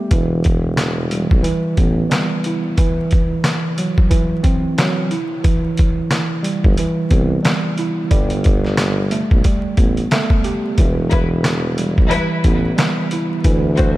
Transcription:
Already playing: G3 A3 B3 G4
0.11 E1 E3, kick, closed hi-hat
0.44 kick, closed hi-hat
0.77 snare, clap, closed hi-hat
1.11 G3, closed hi-hat
1.31 B1, kick
1.43 E3, closed hi-hat
1.77 A1 B3, kick, closed hi-hat
2.10 G3, snare, clap, closed hi-hat
2.44 E4, closed hi-hat
2.78 E3, kick, closed hi-hat
3.11 kick, closed hi-hat
3.44 snare, clap, closed hi-hat
3.78 F#3, closed hi-hat
3.98 kick
4.10 E3, kick, closed hi-hat
4.43 C4, kick, closed hi-hat
4.78 F#3, snare, clap, closed hi-hat
5.11 E4, closed hi-hat
5.44 E3, kick, closed hi-hat
5.77 kick, closed hi-hat
6.11 snare, clap, closed hi-hat
6.43 G3, closed hi-hat
6.64 G1, kick
6.77 E3, closed hi-hat
7.10 C2 B3, kick, closed hi-hat
7.43 G3, snare, clap, closed hi-hat
7.78 E4, closed hi-hat
8.11 G1 G3, kick, closed hi-hat
8.30 closed hi-hat
8.44 kick, closed hi-hat
8.65 snare
8.77 snare, clap, closed hi-hat
9.11 A3, closed hi-hat
9.31 B1, kick
9.44 G3, kick, closed hi-hat
9.77 A1 B3, kick, closed hi-hat
9.97 closed hi-hat
10.11 A3, snare, clap, closed hi-hat
10.30 kick
10.44 G4, closed hi-hat
10.78 E1 E3, kick, closed hi-hat
11.11 G3 E4 B4, kick, closed hi-hat
11.44 snare, clap, closed hi-hat
11.78 G3, closed hi-hat
11.98 B1, kick
12.09 E3 G3 E4 B4, closed hi-hat
12.44 A1 B3, kick, closed hi-hat
12.76 G3, snare, clap, closed hi-hat
13.11 E4, closed hi-hat
13.44 D2 E3, kick, closed hi-hat
13.76 A3 F#4 C5, kick, closed hi-hat

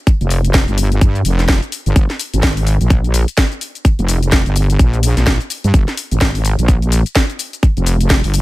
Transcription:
0.07 kick, closed hi-hat, shaker
0.21 F1, closed hi-hat, shaker
0.31 open hi-hat, shaker
0.45 closed hi-hat, shaker
0.54 kick, snare, closed hi-hat, shaker
0.68 G1, closed hi-hat, shaker
0.78 open hi-hat, shaker
0.92 closed hi-hat, shaker
1.01 G2, kick, closed hi-hat, shaker
1.15 closed hi-hat, shaker
1.25 F1, open hi-hat, shaker
1.39 snare, closed hi-hat, shaker
1.48 kick, snare, closed hi-hat, shaker
1.63 closed hi-hat, shaker
1.72 open hi-hat, shaker
1.86 G1, closed hi-hat, shaker
1.96 G1, kick, closed hi-hat, shaker
2.10 snare, closed hi-hat, shaker
2.19 open hi-hat, shaker
2.34 G#1, closed hi-hat, shaker
2.43 kick, snare, closed hi-hat, shaker
2.57 open hi-hat, shaker
2.67 open hi-hat, shaker
2.81 A#1, closed hi-hat, shaker
2.90 kick, closed hi-hat, shaker
3.04 closed hi-hat, shaker
3.14 open hi-hat, shaker
3.28 closed hi-hat, shaker
3.38 kick, snare, closed hi-hat, shaker
3.52 closed hi-hat, shaker
3.61 open hi-hat, shaker
3.75 closed hi-hat, shaker
3.85 kick, closed hi-hat, shaker
3.99 F1, closed hi-hat, shaker
4.08 open hi-hat, shaker
4.23 closed hi-hat, shaker
4.32 kick, snare, closed hi-hat, shaker
4.46 G1, closed hi-hat, shaker
4.56 open hi-hat, shaker
4.70 closed hi-hat, shaker
4.79 A#1, kick, closed hi-hat, shaker
4.93 closed hi-hat, shaker
5.03 open hi-hat, shaker
5.17 A#1, snare, closed hi-hat, shaker
5.27 kick, snare, closed hi-hat, shaker
5.41 closed hi-hat, shaker
5.50 open hi-hat, shaker
5.64 G2, closed hi-hat, shaker
5.74 G1, kick, closed hi-hat, shaker
5.88 snare, closed hi-hat, shaker
5.97 open hi-hat, shaker
6.12 G#1, closed hi-hat, shaker
6.21 kick, snare, closed hi-hat, shaker
6.35 open hi-hat, shaker
6.45 open hi-hat, shaker
6.59 A#1, closed hi-hat, shaker
6.68 kick, closed hi-hat, shaker
6.82 closed hi-hat, shaker
6.92 open hi-hat, shaker
7.06 closed hi-hat, shaker
7.15 kick, snare, closed hi-hat, shaker
7.30 closed hi-hat, shaker
7.39 open hi-hat, shaker
7.53 closed hi-hat, shaker
7.63 kick, closed hi-hat, shaker
7.77 F1, closed hi-hat, shaker
7.86 open hi-hat, shaker
8.01 closed hi-hat, shaker
8.10 kick, snare, closed hi-hat, shaker
8.24 G1, open hi-hat, shaker
8.34 open hi-hat, shaker

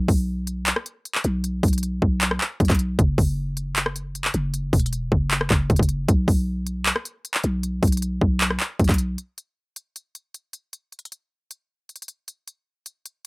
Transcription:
0.08 B1, kick, open hi-hat
0.47 closed hi-hat
0.67 clap, closed hi-hat
0.76 cross-stick
0.86 closed hi-hat
1.05 closed hi-hat
1.15 clap
1.24 B1, closed hi-hat
1.44 closed hi-hat
1.63 B1, kick, closed hi-hat, open hi-hat
1.68 closed hi-hat
1.73 closed hi-hat
1.78 closed hi-hat
1.83 closed hi-hat
2.02 B1, kick
2.21 clap, closed hi-hat
2.31 cross-stick
2.41 clap
2.60 B1, kick, closed hi-hat
2.65 closed hi-hat
2.70 B1, kick, clap, closed hi-hat
2.75 closed hi-hat
2.79 closed hi-hat
2.99 F#1, kick, closed hi-hat
3.18 F#1, kick, open hi-hat
3.57 closed hi-hat
3.76 clap, closed hi-hat
3.86 cross-stick
3.96 closed hi-hat
4.15 closed hi-hat
4.25 clap
4.34 F#1, closed hi-hat
4.54 closed hi-hat
4.73 E1, kick, closed hi-hat, open hi-hat
4.79 closed hi-hat
4.86 closed hi-hat
4.93 closed hi-hat
5.12 F#1, kick
5.31 clap, closed hi-hat
5.41 cross-stick
5.50 F#1, kick, clap
5.70 F#1, kick, closed hi-hat
5.76 F#1, kick, closed hi-hat
5.83 closed hi-hat
5.89 closed hi-hat
6.08 B1, kick, closed hi-hat
6.28 B1, kick, open hi-hat
6.67 closed hi-hat
6.86 clap, closed hi-hat
6.96 cross-stick
7.05 closed hi-hat
7.25 closed hi-hat
7.34 clap
7.44 B1, closed hi-hat
7.63 closed hi-hat
7.83 B1, kick, closed hi-hat, open hi-hat
7.87 closed hi-hat
7.92 closed hi-hat
7.97 closed hi-hat
8.02 closed hi-hat
8.21 B1, kick
8.41 clap, closed hi-hat
8.50 cross-stick
8.60 clap
8.79 B1, kick, closed hi-hat
8.84 closed hi-hat
8.89 B1, kick, clap, closed hi-hat
8.94 closed hi-hat
8.98 closed hi-hat
9.18 closed hi-hat
9.38 closed hi-hat
9.76 closed hi-hat
9.96 closed hi-hat
10.15 closed hi-hat
10.34 closed hi-hat
10.53 closed hi-hat
10.73 closed hi-hat
10.92 closed hi-hat
10.99 closed hi-hat
11.05 closed hi-hat
11.12 closed hi-hat
11.51 closed hi-hat
11.89 closed hi-hat
11.96 closed hi-hat
12.02 closed hi-hat
12.08 closed hi-hat
12.28 closed hi-hat
12.48 closed hi-hat
12.86 closed hi-hat
13.06 closed hi-hat

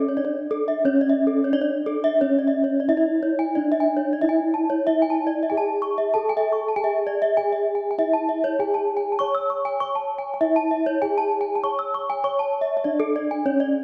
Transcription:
Already playing: C#4
0.08 C#5
0.17 D4 D5
0.25 C#5
0.51 A4
0.68 E5
0.85 C#4 C#5
1.01 D5
1.09 E5
1.27 A4
1.44 C#5
1.52 D4 D5
1.61 C#5
1.86 A4
2.04 E5
2.21 C#4 C#5
2.39 D5
2.47 E5
2.64 C#5
2.80 D5
2.88 E4 E5
2.97 D5
3.23 C#5
3.39 G#5
3.55 D4 D5
3.72 E5
3.80 G#5
3.97 C#5
4.13 D5
4.21 E4 E5
4.29 G#5
4.54 A5
4.70 C#5
4.87 E4 E5
5.02 G#5
5.10 A5
5.27 D5
5.43 E5
5.50 G#4 G#5
5.57 A5
5.82 C#6
5.98 E5
6.14 A4 A5
6.29 G#5
6.37 E5
6.52 C#6
6.68 A5
6.76 G#4 G#5
6.84 E5
7.07 D5
7.22 E5
7.37 G#4 G#5
7.52 E5
7.75 G#5
7.91 G#5
7.98 E4 E5
8.13 A5
8.29 E5
8.44 C#5
8.59 G#4 G#5
8.74 A5
8.97 G#5
9.12 A5
9.19 C#5 C#6
9.35 E6
9.50 C#6
9.65 G#5
9.80 C#5 C#6
9.95 A5
10.18 G#5
10.34 G#5
10.41 E4 E5
10.56 A5
10.71 E5
10.86 C#5
11.02 G#4 G#5
11.18 A5
11.41 G#5
11.55 A5
11.63 C#5 C#6
11.79 E6
11.94 C#6
12.10 G#5
12.24 C#5 C#6
12.39 A5
12.61 E5
12.77 E5
12.84 D4 D5
13.00 A4
13.16 D5
13.31 G#5
13.45 C#4 C#5
13.60 D5

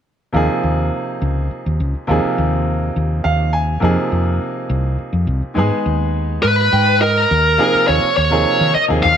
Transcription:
0.33 D#2 C3 F3 A#3 D#4 G#4
0.63 D#2
1.22 C#2
1.51 muted fretless electric bass stroke
1.66 D#2
1.80 C#2
1.95 muted fretless electric bass stroke
2.07 D#2 C3 F3 A#3 D#4 G#4
2.24 muted fretless electric bass stroke
2.38 D#2
2.96 D#2
3.24 D#2 F5
3.53 G#5
3.80 F2 C3 F3 A#3 D#4
3.84 G#4
4.12 F2
4.70 C2
4.98 muted fretless electric bass stroke
5.13 F2
5.27 C2
5.42 muted fretless electric bass stroke
5.54 G#2 D#3 G#3 B3 D#4
5.58 G#4
5.71 muted fretless electric bass stroke
5.86 D#2
6.43 G#2 B4
6.72 G#2 G5
7.01 A#4 D#5
7.31 D#2
7.58 C3 F3 A#3 D#4 G#4
7.74 muted fretless electric bass stroke
7.88 D#2 C#5
8.17 D#2 C#5
8.30 C3 F3 A#3 D#4 G#4
8.61 D#3
8.75 D#5, muted fretless electric bass stroke
8.88 D#2 C3 F3 A#3 D#4 G#4
9.03 D#2 F5

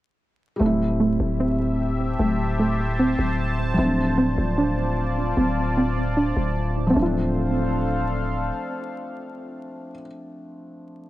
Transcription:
0.56 G3 A3
0.60 D1 A3 C4 G4 C5 E5 A5
0.66 E4
1.00 A3
1.20 D1
1.40 C4
2.19 D1 A3
2.59 A3
2.99 C4
3.19 D1
3.74 F3 A3
3.78 D1 C4 F4 D5
3.83 D4
4.18 C4
4.38 D1
4.58 D4
5.37 D1 C4
5.77 C4
6.17 D4
6.37 D1
6.87 F3 C4
6.93 D1 A3 D4 A4 C5 F5
6.99 C4 F4
7.06 D4

